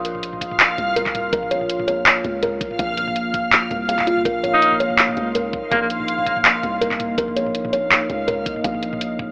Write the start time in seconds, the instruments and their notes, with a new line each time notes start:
Already playing: 808-style bass A#1, ambient pad A#3 F4 C6, synth texture F5
0.05 closed hi-hat
0.15 mid tom
0.23 closed hi-hat
0.33 mid tom
0.41 kick, closed hi-hat
0.51 mid tom
0.60 clap, closed hi-hat
0.78 808-style bass C2, closed hi-hat, mid tom
0.96 kalimba A#4, closed hi-hat, mid tom
1.06 kick, clap
1.15 closed hi-hat, mid tom
1.33 808-style bass A#1, kalimba A#4, ambient pad F5, kick, closed hi-hat
1.43 mid tom
1.51 kalimba C#5, closed hi-hat
1.61 mid tom
1.70 closed hi-hat
1.80 mid tom
1.88 kalimba C#5, closed hi-hat
2.06 clap, closed hi-hat, mid tom
2.24 808-style bass C#2, closed hi-hat, mid tom
2.43 kalimba A#4, closed hi-hat, mid tom
2.61 808-style bass C2, kick, closed hi-hat
2.71 mid tom
2.79 808-style bass A#1, kalimba F5, kick, closed hi-hat
2.89 mid tom
2.93 mid tom
2.97 closed hi-hat, mid tom
3.02 mid tom
3.07 mid tom
3.16 closed hi-hat
3.34 kick, closed hi-hat, mid tom
3.52 clap, closed hi-hat, mid tom
3.71 808-style bass C2, closed hi-hat, mid tom
3.89 kalimba F5, closed hi-hat
3.99 kick, clap, mid tom
4.07 kalimba F4, closed hi-hat
4.17 mid tom
4.25 808-style bass A#1, ambient pad D#4 C6, kalimba A#4, kick, closed hi-hat, mid tom
4.43 kalimba C#5, closed hi-hat, mid tom
4.54 alto saxophone D#4
4.62 closed hi-hat
4.72 mid tom
4.80 kalimba C#5, closed hi-hat
4.90 mid tom
4.99 clap, closed hi-hat
5.08 mid tom
5.17 808-style bass C#2, closed hi-hat
5.35 kalimba A#4, closed hi-hat, mid tom
5.53 808-style bass C2, kick, mid tom
5.71 808-style bass A#1, alto saxophone A#3, kalimba F5, kick, closed hi-hat, mid tom
5.81 alto saxophone A#3
5.90 closed hi-hat
6.00 mid tom
6.08 closed hi-hat
6.18 mid tom
6.26 kick, closed hi-hat
6.36 mid tom
6.45 clap, closed hi-hat
6.63 808-style bass C2, closed hi-hat, mid tom
6.81 kalimba A#4, closed hi-hat, mid tom
6.91 kick, clap
7.00 closed hi-hat, mid tom
7.18 808-style bass A#1, kalimba A#4, ambient pad D#5, kick, closed hi-hat
7.28 mid tom
7.36 kalimba C#5, closed hi-hat
7.46 mid tom
7.55 closed hi-hat
7.65 mid tom
7.73 kalimba C#5, closed hi-hat
7.92 clap, closed hi-hat, mid tom
8.10 808-style bass C#2, closed hi-hat, mid tom
8.28 kalimba A#4, closed hi-hat, mid tom
8.46 808-style bass C2, kick, closed hi-hat
8.56 mid tom
8.64 808-style bass A#1, kalimba F5, kick, closed hi-hat
8.74 mid tom
8.83 closed hi-hat
8.93 mid tom
9.01 closed hi-hat
9.19 kick, mid tom